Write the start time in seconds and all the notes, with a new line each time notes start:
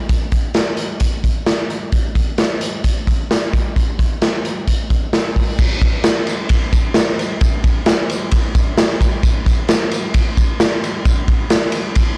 0.09 kick, closed hi-hat
0.32 kick, closed hi-hat
0.54 snare, closed hi-hat
0.77 closed hi-hat
1.00 kick, closed hi-hat
1.24 kick, closed hi-hat
1.46 snare, closed hi-hat
1.70 closed hi-hat
1.92 kick, closed hi-hat
2.15 kick, closed hi-hat
2.38 snare, closed hi-hat
2.61 closed hi-hat
2.84 kick, closed hi-hat
3.07 kick, closed hi-hat
3.31 snare, closed hi-hat
3.53 kick, closed hi-hat
3.76 kick, closed hi-hat
3.99 kick, closed hi-hat
4.22 snare, closed hi-hat
4.45 closed hi-hat
4.67 kick, closed hi-hat
4.90 kick, closed hi-hat
5.13 snare, closed hi-hat
5.36 kick, open hi-hat
5.59 kick, crash, tambourine
5.82 kick, ride
6.03 snare, ride, tambourine
6.27 ride, tambourine
6.49 kick, ride, tambourine
6.73 kick, ride, tambourine
6.94 snare, ride, tambourine
7.19 ride, tambourine
7.41 kick, ride, tambourine
7.64 kick, ride, tambourine
7.86 snare, ride, tambourine
8.09 ride, tambourine
8.31 kick, ride, tambourine
8.55 kick, ride, tambourine
8.78 snare, ride, tambourine
9.01 kick, ride, tambourine
9.23 kick, ride, tambourine
9.46 kick, ride, tambourine
9.68 snare, ride, tambourine
9.91 ride, tambourine
10.14 kick, ride, tambourine
10.37 kick, ride, tambourine
10.60 snare, ride, tambourine
10.84 ride, tambourine
11.05 kick, ride, tambourine
11.28 kick, ride
11.50 snare, ride, tambourine
11.72 ride, tambourine
11.95 kick, ride, tambourine